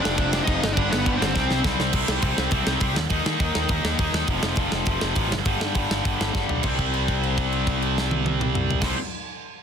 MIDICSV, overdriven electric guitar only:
0, 0, Header, 1, 2, 480
1, 0, Start_track
1, 0, Key_signature, -3, "minor"
1, 0, Tempo, 293830
1, 1245, Time_signature, 4, 2, 24, 8
1, 15728, End_track
2, 0, Start_track
2, 0, Title_t, "Overdriven electric guitar"
2, 0, Program_c, 0, 29
2, 0, Note_on_c, 0, 41, 96
2, 0, Note_on_c, 0, 48, 110
2, 0, Note_on_c, 0, 53, 109
2, 277, Note_off_c, 0, 41, 0
2, 281, Note_off_c, 0, 48, 0
2, 296, Note_on_c, 0, 41, 107
2, 298, Note_off_c, 0, 53, 0
2, 301, Note_on_c, 0, 48, 123
2, 317, Note_on_c, 0, 53, 122
2, 755, Note_off_c, 0, 53, 0
2, 766, Note_off_c, 0, 48, 0
2, 771, Note_off_c, 0, 41, 0
2, 774, Note_on_c, 0, 53, 109
2, 786, Note_on_c, 0, 48, 97
2, 790, Note_on_c, 0, 41, 85
2, 995, Note_off_c, 0, 53, 0
2, 1001, Note_off_c, 0, 48, 0
2, 1003, Note_off_c, 0, 41, 0
2, 1249, Note_on_c, 0, 43, 112
2, 1260, Note_on_c, 0, 50, 119
2, 1282, Note_on_c, 0, 55, 109
2, 1719, Note_off_c, 0, 55, 0
2, 1734, Note_off_c, 0, 50, 0
2, 1739, Note_on_c, 0, 55, 108
2, 1745, Note_off_c, 0, 43, 0
2, 1754, Note_on_c, 0, 50, 110
2, 1764, Note_on_c, 0, 43, 86
2, 2194, Note_off_c, 0, 55, 0
2, 2202, Note_off_c, 0, 50, 0
2, 2207, Note_off_c, 0, 43, 0
2, 2217, Note_on_c, 0, 48, 108
2, 2235, Note_on_c, 0, 55, 106
2, 2241, Note_on_c, 0, 60, 124
2, 2677, Note_off_c, 0, 60, 0
2, 2694, Note_off_c, 0, 48, 0
2, 2696, Note_off_c, 0, 55, 0
2, 2697, Note_on_c, 0, 60, 104
2, 2714, Note_on_c, 0, 48, 98
2, 2716, Note_on_c, 0, 55, 109
2, 3149, Note_off_c, 0, 48, 0
2, 3152, Note_off_c, 0, 60, 0
2, 3153, Note_off_c, 0, 55, 0
2, 3169, Note_on_c, 0, 48, 91
2, 3172, Note_on_c, 0, 55, 107
2, 3185, Note_on_c, 0, 60, 103
2, 3630, Note_off_c, 0, 60, 0
2, 3649, Note_on_c, 0, 60, 108
2, 3650, Note_off_c, 0, 55, 0
2, 3653, Note_off_c, 0, 48, 0
2, 3656, Note_on_c, 0, 55, 91
2, 3672, Note_on_c, 0, 48, 82
2, 4099, Note_off_c, 0, 48, 0
2, 4104, Note_off_c, 0, 55, 0
2, 4118, Note_off_c, 0, 60, 0
2, 4118, Note_on_c, 0, 48, 85
2, 4123, Note_on_c, 0, 55, 95
2, 4138, Note_on_c, 0, 60, 99
2, 4586, Note_off_c, 0, 60, 0
2, 4594, Note_off_c, 0, 55, 0
2, 4604, Note_off_c, 0, 48, 0
2, 4606, Note_on_c, 0, 60, 105
2, 4614, Note_on_c, 0, 55, 96
2, 4623, Note_on_c, 0, 48, 91
2, 4826, Note_off_c, 0, 60, 0
2, 4830, Note_off_c, 0, 55, 0
2, 4835, Note_off_c, 0, 48, 0
2, 5082, Note_on_c, 0, 51, 90
2, 5093, Note_on_c, 0, 58, 107
2, 5110, Note_on_c, 0, 63, 106
2, 5554, Note_off_c, 0, 63, 0
2, 5562, Note_off_c, 0, 58, 0
2, 5566, Note_off_c, 0, 51, 0
2, 5573, Note_on_c, 0, 63, 104
2, 5581, Note_on_c, 0, 58, 92
2, 5586, Note_on_c, 0, 51, 91
2, 6021, Note_off_c, 0, 51, 0
2, 6040, Note_off_c, 0, 58, 0
2, 6041, Note_on_c, 0, 51, 99
2, 6044, Note_off_c, 0, 63, 0
2, 6060, Note_on_c, 0, 58, 88
2, 6064, Note_on_c, 0, 63, 91
2, 6501, Note_off_c, 0, 63, 0
2, 6521, Note_off_c, 0, 51, 0
2, 6521, Note_on_c, 0, 63, 107
2, 6524, Note_off_c, 0, 58, 0
2, 6540, Note_on_c, 0, 51, 83
2, 6544, Note_on_c, 0, 58, 88
2, 6984, Note_off_c, 0, 63, 0
2, 6994, Note_off_c, 0, 51, 0
2, 6996, Note_off_c, 0, 58, 0
2, 6998, Note_on_c, 0, 41, 95
2, 7010, Note_on_c, 0, 48, 97
2, 7019, Note_on_c, 0, 53, 111
2, 7451, Note_off_c, 0, 53, 0
2, 7466, Note_off_c, 0, 48, 0
2, 7470, Note_on_c, 0, 53, 110
2, 7479, Note_off_c, 0, 41, 0
2, 7486, Note_on_c, 0, 48, 96
2, 7499, Note_on_c, 0, 41, 81
2, 7942, Note_off_c, 0, 41, 0
2, 7956, Note_off_c, 0, 48, 0
2, 7961, Note_on_c, 0, 41, 87
2, 7964, Note_off_c, 0, 53, 0
2, 7976, Note_on_c, 0, 48, 94
2, 7984, Note_on_c, 0, 53, 92
2, 8421, Note_off_c, 0, 53, 0
2, 8435, Note_off_c, 0, 48, 0
2, 8440, Note_on_c, 0, 53, 95
2, 8450, Note_off_c, 0, 41, 0
2, 8455, Note_on_c, 0, 48, 91
2, 8470, Note_on_c, 0, 41, 91
2, 8666, Note_off_c, 0, 53, 0
2, 8673, Note_off_c, 0, 48, 0
2, 8681, Note_off_c, 0, 41, 0
2, 8912, Note_on_c, 0, 43, 94
2, 8924, Note_on_c, 0, 50, 94
2, 8929, Note_on_c, 0, 55, 105
2, 9370, Note_off_c, 0, 55, 0
2, 9388, Note_off_c, 0, 50, 0
2, 9390, Note_on_c, 0, 55, 90
2, 9391, Note_off_c, 0, 43, 0
2, 9407, Note_on_c, 0, 50, 98
2, 9410, Note_on_c, 0, 43, 82
2, 9870, Note_off_c, 0, 43, 0
2, 9885, Note_off_c, 0, 50, 0
2, 9889, Note_on_c, 0, 43, 81
2, 9893, Note_off_c, 0, 55, 0
2, 9904, Note_on_c, 0, 50, 91
2, 9913, Note_on_c, 0, 55, 85
2, 10344, Note_off_c, 0, 55, 0
2, 10354, Note_off_c, 0, 50, 0
2, 10364, Note_on_c, 0, 55, 100
2, 10365, Note_off_c, 0, 43, 0
2, 10373, Note_on_c, 0, 50, 90
2, 10384, Note_on_c, 0, 43, 78
2, 10822, Note_off_c, 0, 50, 0
2, 10829, Note_on_c, 0, 48, 89
2, 10830, Note_off_c, 0, 55, 0
2, 10841, Note_off_c, 0, 43, 0
2, 10866, Note_on_c, 0, 55, 109
2, 10895, Note_on_c, 0, 60, 107
2, 14394, Note_off_c, 0, 48, 0
2, 14400, Note_on_c, 0, 48, 98
2, 14429, Note_off_c, 0, 55, 0
2, 14435, Note_on_c, 0, 55, 93
2, 14464, Note_off_c, 0, 60, 0
2, 14470, Note_on_c, 0, 60, 107
2, 14618, Note_off_c, 0, 48, 0
2, 14636, Note_off_c, 0, 55, 0
2, 14653, Note_off_c, 0, 60, 0
2, 15728, End_track
0, 0, End_of_file